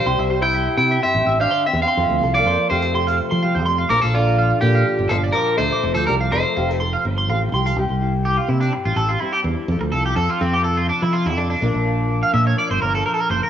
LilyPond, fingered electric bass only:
\new Staff \with { instrumentName = "Fingered electric bass" } { \clef bass \time 4/4 \key c \mixolydian \tempo 4 = 124 c,16 c,4~ c,16 c8 r16 a,,16 a,,8 r8 e,16 r16 | f,16 d,16 c,8 f,16 r16 f,4~ f,16 f8 f,8. | bes,,16 bes,,4~ bes,,16 bes,8 r16 g,,16 g,,8 r8 d,16 r16 | f,,16 d,16 c,8 f,,16 r16 f,,4 g,,8 a,,8 c,8 |
c,16 c,4~ c,16 c8 r16 a,,16 a,,8 r8 e,16 r16 | f,16 d,16 c,8 f,16 r16 f,4~ f,16 f8 f,8. | bes,,16 bes,,4~ bes,,16 bes,8 r16 g,,16 g,,8 r8 fis,,16 r16 | }